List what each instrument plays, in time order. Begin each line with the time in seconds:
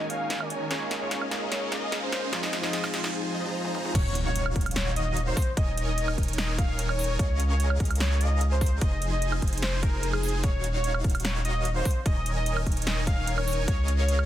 Already playing: sub bass D#1, supersaw synth D#3 D#4 A#4 C#5 G#5, tine electric piano G#3 A#3 C#4 D#4 F#4, riser
0.10 soft synth lead F5, closed hi-hat
0.30 snare, closed hi-hat
0.40 soft synth lead C#5, high woodblock
0.50 closed hi-hat
0.70 sub bass C#2, tine electric piano G#3 A#3 C#4 D#4 F4, supersaw synth C#4 G#4 A#4 D#5 F5, soft synth lead C#5, snare, closed hi-hat
0.91 snare, closed hi-hat
0.99 tine electric piano G#3 A#3 C#4 D#4 F4, soft synth lead C#5
1.11 snare, closed hi-hat
1.22 high woodblock
1.31 sub bass C#2, supersaw synth C#4 G#4 A#4 D#5 F5, snare, closed hi-hat
1.52 soft synth lead C#5, snare, closed hi-hat
1.72 soft synth lead D#5, snare, closed hi-hat
1.92 snare, closed hi-hat
2.03 soft synth lead C5
2.12 snare, closed hi-hat
2.32 sub bass F1, tine electric piano F3 G#3 C4 D#4 F4, supersaw synth F3 D#4 G#4 C5 G#5, soft synth lead D#5, snare, closed hi-hat
2.43 snare
2.53 snare, closed hi-hat
2.61 tine electric piano F3 G#3 C4 D#4 F4, soft synth lead D#5, snare
2.73 snare, closed hi-hat
2.84 snare, high woodblock
2.94 supersaw synth F3 D#4 G#4 C5 G#5, snare, closed hi-hat
3.04 snare
3.34 supersaw synth F3 D#4 G#4 C5 D#5
3.45 supersaw synth F3 D#4 G#4 C5 A#5
3.65 high tom
3.75 mid tom
3.85 mid tom
3.95 sub bass D#1, supersaw synth D#3 F#4, soft synth lead C#5, kick, closed hi-hat, crash, impact
4.15 closed hi-hat
4.26 soft synth lead C#5
4.36 closed hi-hat
4.46 high woodblock
4.56 sub bass D#1, supersaw synth D#3 D#4 F#4 C#5 F5, kick, closed hi-hat
4.61 closed hi-hat
4.66 closed hi-hat, high woodblock
4.71 closed hi-hat
4.76 soft synth lead C#5, snare, closed hi-hat
4.96 soft synth lead D#5, closed hi-hat
5.17 closed hi-hat
5.27 soft synth lead C5
5.37 kick, open hi-hat
5.42 closed hi-hat
5.57 sub bass D#1, supersaw synth D#3 D#4 A#4 C#5 G#5, soft synth lead D#5, kick, closed hi-hat
5.77 closed hi-hat
5.88 soft synth lead D#5
5.98 closed hi-hat
6.08 high woodblock
6.18 sub bass D#1, supersaw synth D#3 D#4 A#4 C#5 G#5, kick, closed hi-hat
6.23 closed hi-hat
6.28 closed hi-hat
6.33 closed hi-hat
6.38 soft synth lead D#5, snare, closed hi-hat
6.58 soft synth lead F5, kick, closed hi-hat
6.79 closed hi-hat
6.89 soft synth lead C#5, high woodblock
6.99 open hi-hat
7.04 closed hi-hat
7.19 sub bass C#2, supersaw synth C#4 G#4 A#4 D#5 F5, soft synth lead C#5, kick, closed hi-hat
7.40 closed hi-hat
7.50 soft synth lead C#5
7.60 closed hi-hat
7.70 high woodblock
7.80 sub bass C#2, supersaw synth C#4 G#4 A#4 D#5 F5, kick, closed hi-hat
7.85 closed hi-hat
7.91 closed hi-hat, high woodblock
7.95 closed hi-hat
8.00 soft synth lead C#5, snare, closed hi-hat
8.21 soft synth lead D#5, closed hi-hat
8.41 closed hi-hat
8.52 soft synth lead C5
8.61 kick, open hi-hat
8.66 closed hi-hat
8.81 sub bass F1, supersaw synth F3 D#4 G#4 C5 G#5, soft synth lead D#5, kick, closed hi-hat
9.02 closed hi-hat
9.12 soft synth lead D#5
9.22 closed hi-hat
9.32 high woodblock
9.42 sub bass F1, supersaw synth F3 D#4 G#4 C5 G#5, kick, closed hi-hat
9.48 closed hi-hat
9.53 closed hi-hat
9.58 closed hi-hat
9.62 soft synth lead C5, snare, closed hi-hat
9.83 soft synth lead A#4, kick, closed hi-hat
10.03 closed hi-hat
10.13 soft synth lead G#4, high woodblock
10.23 open hi-hat
10.29 closed hi-hat
10.44 sub bass D#1, supersaw synth D#3 D#4 F#4 C#5 F5, soft synth lead C#5, kick, closed hi-hat
10.64 closed hi-hat
10.74 soft synth lead C#5
10.84 closed hi-hat
10.94 high woodblock
11.04 sub bass D#1, supersaw synth D#3 D#4 F#4 C#5 F5, kick, closed hi-hat
11.10 closed hi-hat
11.15 closed hi-hat, high woodblock
11.20 closed hi-hat
11.25 soft synth lead C#5, snare, closed hi-hat
11.45 soft synth lead D#5, closed hi-hat
11.65 closed hi-hat
11.75 soft synth lead C5
11.85 kick, open hi-hat
11.91 closed hi-hat
12.06 sub bass D#1, supersaw synth D#3 D#4 A#4 C#5 G#5, soft synth lead D#5, kick, closed hi-hat
12.26 closed hi-hat
12.36 soft synth lead D#5
12.46 closed hi-hat
12.57 high woodblock
12.66 sub bass D#1, supersaw synth D#3 D#4 A#4 C#5 G#5, kick, closed hi-hat
12.72 closed hi-hat
12.77 closed hi-hat
12.82 closed hi-hat
12.87 soft synth lead D#5, snare, closed hi-hat
13.07 soft synth lead F5, kick, closed hi-hat
13.27 closed hi-hat
13.38 soft synth lead C#5, high woodblock
13.48 open hi-hat
13.53 closed hi-hat
13.68 sub bass C#2, supersaw synth C#4 G#4 A#4 D#5 F5, soft synth lead C#5, kick, closed hi-hat
13.88 closed hi-hat
13.99 soft synth lead C#5
14.09 closed hi-hat
14.19 high woodblock